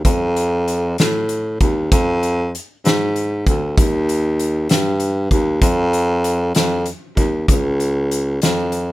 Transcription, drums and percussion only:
0.05 kick, closed hi-hat
0.36 closed hi-hat
0.68 closed hi-hat
0.98 snare, closed hi-hat
1.29 closed hi-hat
1.60 kick, closed hi-hat
1.92 kick, closed hi-hat
2.23 closed hi-hat
2.55 closed hi-hat
2.85 snare, closed hi-hat
3.16 closed hi-hat
3.47 kick, closed hi-hat
3.78 kick, closed hi-hat
4.09 closed hi-hat
4.39 closed hi-hat
4.69 snare, closed hi-hat
5.00 closed hi-hat
5.31 kick, closed hi-hat
5.62 kick, closed hi-hat
5.93 closed hi-hat
6.24 closed hi-hat
6.55 snare, closed hi-hat
6.86 closed hi-hat
7.17 kick, closed hi-hat
7.48 kick, closed hi-hat
7.80 closed hi-hat
8.11 closed hi-hat
8.42 snare, closed hi-hat
8.72 closed hi-hat

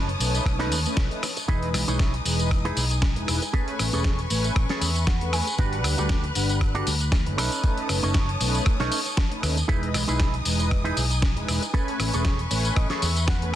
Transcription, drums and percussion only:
0.09 closed hi-hat
0.20 open hi-hat, tambourine
0.35 closed hi-hat, tambourine
0.46 kick, cross-stick, closed hi-hat
0.60 snare, closed hi-hat
0.72 open hi-hat, tambourine
0.86 closed hi-hat, tambourine
0.97 kick, snare, closed hi-hat
1.11 closed hi-hat
1.23 cross-stick, open hi-hat, tambourine
1.37 closed hi-hat, tambourine
1.48 kick, closed hi-hat
1.63 closed hi-hat
1.74 cross-stick, open hi-hat, tambourine
1.88 closed hi-hat, tambourine
1.99 kick, snare, closed hi-hat
2.14 closed hi-hat
2.26 open hi-hat, tambourine
2.39 closed hi-hat, tambourine
2.51 kick, cross-stick, closed hi-hat, tambourine
2.65 closed hi-hat
2.77 open hi-hat, tambourine
2.91 closed hi-hat, tambourine
3.02 kick, snare, closed hi-hat, tambourine
3.16 closed hi-hat
3.28 cross-stick, open hi-hat, tambourine
3.42 closed hi-hat, tambourine
3.54 kick, closed hi-hat, tambourine
3.68 closed hi-hat
3.79 cross-stick, open hi-hat, tambourine
3.93 closed hi-hat, tambourine
4.04 kick, snare, closed hi-hat, tambourine
4.19 closed hi-hat
4.30 open hi-hat, tambourine
4.44 closed hi-hat, tambourine
4.56 kick, cross-stick, closed hi-hat, tambourine
4.69 snare, closed hi-hat
4.82 open hi-hat, tambourine
4.96 closed hi-hat, tambourine
5.07 kick, snare, closed hi-hat, tambourine
5.21 closed hi-hat
5.33 cross-stick, open hi-hat, tambourine
5.47 closed hi-hat, tambourine
5.58 kick, closed hi-hat, tambourine
5.73 closed hi-hat
5.84 cross-stick, open hi-hat, tambourine
5.98 closed hi-hat, tambourine
6.09 kick, snare, closed hi-hat, tambourine
6.24 closed hi-hat
6.35 open hi-hat, tambourine
6.49 closed hi-hat, tambourine
6.61 kick, cross-stick, closed hi-hat
6.75 closed hi-hat
6.87 open hi-hat, tambourine
7.01 closed hi-hat, tambourine
7.12 kick, snare, closed hi-hat, tambourine
7.26 closed hi-hat
7.38 cross-stick, open hi-hat, tambourine
7.52 closed hi-hat, tambourine
7.64 kick, closed hi-hat
7.77 closed hi-hat
7.89 cross-stick, open hi-hat, tambourine
8.03 closed hi-hat, tambourine
8.14 kick, snare, closed hi-hat
8.29 closed hi-hat
8.41 open hi-hat, tambourine
8.54 closed hi-hat, tambourine
8.66 kick, cross-stick, closed hi-hat
8.80 snare, closed hi-hat
8.92 open hi-hat, tambourine
9.06 closed hi-hat, tambourine
9.17 kick, snare, closed hi-hat
9.32 closed hi-hat
9.43 cross-stick, open hi-hat, tambourine
9.57 closed hi-hat, tambourine
9.69 kick, closed hi-hat, tambourine
9.83 closed hi-hat
9.94 cross-stick, open hi-hat, tambourine
10.08 closed hi-hat, tambourine
10.20 kick, snare, closed hi-hat, tambourine
10.34 closed hi-hat
10.45 open hi-hat, tambourine
10.59 closed hi-hat, tambourine
10.71 kick, cross-stick, closed hi-hat, tambourine
10.85 closed hi-hat
10.97 open hi-hat, tambourine
11.11 closed hi-hat, tambourine
11.22 kick, snare, closed hi-hat, tambourine
11.37 closed hi-hat
11.48 cross-stick, open hi-hat, tambourine
11.62 closed hi-hat, tambourine
11.74 kick, closed hi-hat, tambourine
11.88 closed hi-hat
12.00 cross-stick, open hi-hat, tambourine
12.14 closed hi-hat, tambourine
12.25 kick, snare, closed hi-hat, tambourine
12.39 closed hi-hat
12.51 open hi-hat, tambourine
12.65 closed hi-hat, tambourine
12.76 kick, cross-stick, closed hi-hat, tambourine
12.90 snare, closed hi-hat
13.02 open hi-hat, tambourine
13.16 closed hi-hat, tambourine
13.28 kick, snare, closed hi-hat
13.42 closed hi-hat

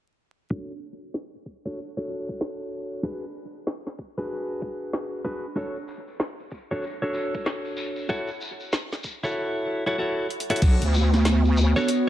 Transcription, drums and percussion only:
0.51 kick
1.14 snare
1.46 kick
2.29 kick
2.41 snare
3.04 kick
3.67 snare
3.87 snare
3.99 kick
4.62 kick
4.93 snare
5.25 kick
5.57 kick, shekere
5.76 shekere
5.88 shekere
6.07 shekere
6.19 snare, shekere
6.39 shekere
6.51 kick, shekere
6.71 shekere
6.82 shekere
7.02 shekere
7.14 shekere
7.34 kick, shekere
7.45 snare, shekere
7.65 shekere
7.77 shekere
7.96 shekere
8.09 kick, shekere
8.27 shekere
8.41 shekere
8.60 shekere
8.72 snare, shekere
8.92 snare, shekere
9.04 kick, shekere
9.24 shekere
10.30 closed hi-hat
10.40 closed hi-hat
10.50 closed hi-hat
10.56 closed hi-hat
10.62 kick, closed hi-hat, crash, shekere
10.82 closed hi-hat, shekere
10.94 shekere
11.13 snare, shekere
11.25 snare, closed hi-hat, shekere
11.45 shekere
11.57 shekere
11.76 shekere
11.88 closed hi-hat, shekere

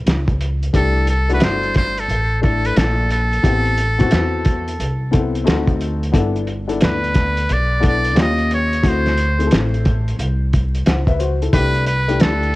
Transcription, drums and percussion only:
0.07 snare, closed hi-hat
0.28 kick, closed hi-hat
0.41 closed hi-hat
0.63 closed hi-hat
0.74 kick, closed hi-hat
1.07 closed hi-hat
1.30 closed hi-hat
1.40 snare, closed hi-hat
1.63 closed hi-hat
1.74 kick, snare, closed hi-hat
1.98 closed hi-hat
2.09 closed hi-hat
2.43 kick, closed hi-hat
2.65 closed hi-hat
2.76 snare, closed hi-hat
3.10 closed hi-hat
3.33 closed hi-hat
3.44 kick, closed hi-hat
3.65 closed hi-hat
3.78 closed hi-hat
4.00 kick, closed hi-hat
4.11 snare, closed hi-hat
4.45 kick, closed hi-hat
4.68 closed hi-hat
4.80 closed hi-hat
5.13 kick, closed hi-hat
5.35 closed hi-hat
5.47 snare, closed hi-hat
5.68 kick, closed hi-hat
5.81 closed hi-hat
6.03 closed hi-hat
6.14 kick, closed hi-hat
6.36 closed hi-hat
6.47 closed hi-hat
6.69 closed hi-hat
6.81 snare, closed hi-hat
7.04 closed hi-hat
7.14 kick, snare, closed hi-hat
7.37 closed hi-hat
7.49 closed hi-hat
7.83 kick, closed hi-hat
8.04 closed hi-hat
8.16 snare, closed hi-hat
8.38 closed hi-hat
8.51 closed hi-hat
8.73 closed hi-hat
8.84 kick, closed hi-hat
9.06 snare, closed hi-hat
9.17 closed hi-hat
9.40 closed hi-hat
9.51 snare, closed hi-hat
9.74 closed hi-hat
9.85 kick, closed hi-hat
10.08 closed hi-hat
10.19 closed hi-hat
10.53 kick, closed hi-hat
10.75 closed hi-hat
10.86 snare, closed hi-hat
11.07 kick, closed hi-hat
11.20 closed hi-hat
11.42 closed hi-hat
11.53 kick, closed hi-hat
11.75 closed hi-hat
11.86 closed hi-hat
12.09 closed hi-hat
12.20 snare, closed hi-hat
12.43 closed hi-hat

